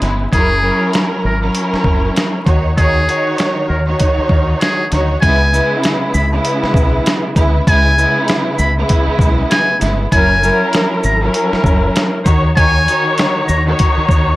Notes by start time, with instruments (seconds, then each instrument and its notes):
0.00 fingered electric bass G1, string section C#3 G#3 B3 E4, snare, closed hi-hat
0.31 fingered electric bass F#1, string section F#3 C#4 E4 A#4, muted trumpet G#4, kick, closed hi-hat
0.62 string section F#3 C#4 E4 A#4
0.93 snare, closed hi-hat
1.25 fingered electric bass G#1, muted trumpet A#4
1.41 string section F#3 C#4 E4 A#4
1.55 closed hi-hat
1.73 muted fingered electric bass stroke, snare
1.84 fingered electric bass F#1, kick
2.16 snare, closed hi-hat
2.45 fingered electric bass D#2, string section D#3 D#4 F#4 C#5, kick, closed hi-hat
2.76 string section D#3 D#4 F#4 C#5, muted trumpet G#4, kick, closed hi-hat
3.07 string section D#3 D#4 F#4 C#5, closed hi-hat
3.38 snare, closed hi-hat
3.68 fingered electric bass D#2, muted trumpet A#4
3.85 string section D#3 D#4 F#4 C#5
4.00 kick, closed hi-hat
4.18 muted fingered electric bass stroke
4.29 fingered electric bass D#2, kick
4.60 muted trumpet G#4, snare, closed hi-hat
4.92 fingered electric bass D2, string section D#3 D#4 F#4 C#5, snare, closed hi-hat
5.21 fingered electric bass C#2, string section C#3 G#3 B3 E4, muted trumpet G#5, kick, closed hi-hat
5.51 string section C#3 G#3 B3 E4, shaker
5.83 snare, closed hi-hat
6.13 fingered electric bass C#2, muted trumpet B5, shaker
6.31 string section C#3 G#3 B3 E4
6.45 closed hi-hat
6.63 muted fingered electric bass stroke, snare
6.74 fingered electric bass B1, kick, shaker
7.06 snare, closed hi-hat
7.35 fingered electric bass D2, string section C#3 G#3 B3 E4, kick, closed hi-hat, shaker
7.67 fingered electric bass C#2, string section C#3 G#3 B3 E4, muted trumpet G#5, kick, closed hi-hat
7.96 string section C#3 G#3 B3 E4, shaker
8.28 snare, closed hi-hat
8.58 fingered electric bass C#2, muted trumpet B5, shaker
8.77 string section C#3 G#3 B3 E4
8.89 kick, closed hi-hat
9.08 muted fingered electric bass stroke
9.19 fingered electric bass B1, kick, shaker
9.51 muted trumpet G#5, snare, closed hi-hat
9.79 fingered electric bass G1, string section C#3 G#3 B3 E4, snare, closed hi-hat, shaker
10.11 fingered electric bass F#1, string section F#3 C#4 E4 A#4, muted trumpet G#5, kick, closed hi-hat
10.41 string section F#3 C#4 E4 A#4, shaker
10.73 snare, closed hi-hat
11.04 fingered electric bass G#1, muted trumpet A#5, shaker
11.21 string section F#3 C#4 E4 A#4
11.34 closed hi-hat
11.53 muted fingered electric bass stroke, snare
11.64 fingered electric bass F#1, kick, shaker
11.96 snare, closed hi-hat
12.24 fingered electric bass D#2, string section D#3 D#4 F#4 C#5, kick, closed hi-hat, shaker
12.55 string section D#3 D#4 F#4 C#5, muted trumpet G#5, kick, closed hi-hat
12.86 string section D#3 D#4 F#4 C#5, closed hi-hat, shaker
13.18 snare, closed hi-hat
13.47 fingered electric bass D#2, muted trumpet A#5, shaker
13.64 string section D#3 D#4 F#4 C#5
13.79 kick, closed hi-hat
13.98 muted fingered electric bass stroke
14.09 fingered electric bass D#2, kick, shaker